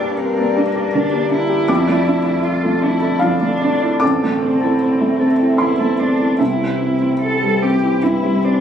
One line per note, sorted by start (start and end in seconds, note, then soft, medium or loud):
0.00 1.66 G2 medium
0.00 1.69 G3 medium
0.00 0.39 A#3 medium
0.00 0.12 D4 medium
0.00 0.20 D4 medium
0.00 4.01 D4 medium
0.00 0.55 G4 medium
0.00 0.61 G4 medium
0.00 0.17 A#4 medium
0.00 1.69 A#4 medium
0.00 1.30 G5 medium
0.00 1.64 E6 loud
0.18 0.59 C4 medium
0.18 0.93 A#4 medium
0.37 0.68 A#3 soft
0.37 0.74 D5 medium
0.56 0.95 A#3 medium
0.56 0.87 D4 soft
0.56 1.11 G4 medium
0.75 1.05 G4 soft
0.75 1.86 D5 medium
0.94 1.25 D3 soft
0.94 1.31 D4 medium
0.94 1.72 A#4 medium
1.12 1.43 A#3 soft
1.12 1.72 G4 medium
1.31 1.62 D4 soft
1.31 2.47 E4 medium
1.31 1.48 G5 medium
1.49 1.69 G4 soft
1.49 1.72 G5 medium
1.68 3.97 F2 medium
1.68 6.40 D3 medium
1.68 2.24 D4 medium
1.68 6.39 A4 medium
1.68 3.17 D6 medium
1.87 2.18 A3 soft
1.87 3.60 D5 medium
2.07 2.37 D4 soft
2.25 2.81 D4 medium
2.25 2.87 E5 medium
2.45 2.84 F4 medium
2.63 2.95 A3 soft
2.63 3.01 A4 soft
2.82 3.40 D4 medium
2.82 3.14 D4 soft
2.82 3.23 E4 medium
3.02 3.33 E4 soft
3.02 4.00 A4 soft
3.19 3.54 F3 soft
3.19 4.02 D4 medium
3.19 4.05 F4 soft
3.19 3.97 F5 medium
3.41 3.74 A3 soft
3.41 4.05 D4 medium
3.61 3.95 D4 soft
3.61 3.80 D5 soft
3.82 4.02 E4 soft
3.82 4.05 D5 soft
4.00 6.36 A1 medium
4.00 8.60 C4 soft
4.00 5.61 C4 medium
4.00 4.60 A4 medium
4.00 5.54 D6 medium
4.22 4.54 A3 soft
4.22 5.98 A5 soft
4.41 4.73 C4 soft
4.41 4.80 C5 soft
4.61 5.25 E4 soft
4.61 5.18 A4 medium
4.81 5.58 C5 soft
5.01 5.32 A3 soft
5.01 5.38 E5 soft
5.20 5.52 C4 soft
5.20 5.78 A4 medium
5.39 5.72 E4 soft
5.39 8.60 E5 soft
5.58 5.91 E2 soft
5.58 6.01 E4 medium
5.58 6.59 C5 soft
5.58 6.35 C6 medium
5.79 6.12 A3 soft
5.79 6.43 A4 medium
5.99 6.32 C4 soft
5.99 6.39 D4 soft
5.99 6.19 A5 soft
6.20 6.40 E4 soft
6.20 6.43 A5 soft
6.39 8.60 C2 soft
6.39 8.60 E3 soft
6.39 7.00 C4 medium
6.39 7.11 E4 soft
6.39 8.60 G4 soft
6.39 7.99 E5 soft
6.60 6.93 G3 soft
6.60 8.43 C5 soft
6.80 7.13 C4 soft
6.80 7.20 E4 soft
7.01 7.60 C4 medium
7.01 7.67 E4 soft
7.21 8.01 E4 soft
7.21 7.64 A4 medium
7.41 7.75 G3 soft
7.41 7.81 G4 soft
7.62 8.21 C4 soft
7.62 7.95 C4 soft
7.62 8.04 G4 soft
7.82 8.02 E4 soft
7.82 8.60 G4 soft
8.02 8.37 G2 soft
8.02 8.60 E4 soft
8.02 8.47 E4 soft
8.02 8.60 E4 medium
8.23 8.58 G3 soft
8.23 8.60 C4 soft
8.44 8.60 C4 soft
8.44 8.60 D4 soft
8.44 8.60 C5 soft